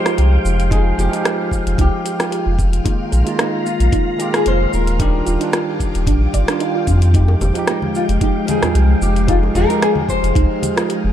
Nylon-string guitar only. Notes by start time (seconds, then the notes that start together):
Already playing: C5
0.73 G#4
1.00 G4
1.81 G4
3.40 D#4
3.66 F4
4.21 G4
4.35 G#4
4.48 C5
4.74 A#4
7.70 D#4
7.96 F4
8.23 G4
8.49 G#4
9.03 G4
9.29 F4
9.56 A#4
9.83 G#4
10.10 C5